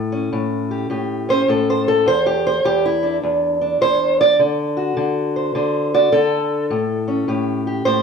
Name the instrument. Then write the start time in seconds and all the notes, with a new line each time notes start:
steel-string acoustic guitar
Already playing: A2
0.12 C#4
0.33 A2
0.71 G4
0.90 A2 G4
1.29 C#4 C5
1.48 A2 A4
1.70 C5
1.88 A4
2.06 E2 C5
2.26 G4
2.47 C5
2.65 E2 G4
2.86 E4
3.03 D4
3.23 E2
3.61 D4
3.81 E2 C5
4.21 D5
4.39 D3
4.77 F#4
4.97 D3
5.36 C5
5.55 D3 C5
5.94 F#4 D5
6.12 D3 A4
6.70 A2
7.08 C#4
7.28 A2 G4
7.67 G4
7.85 A2 C5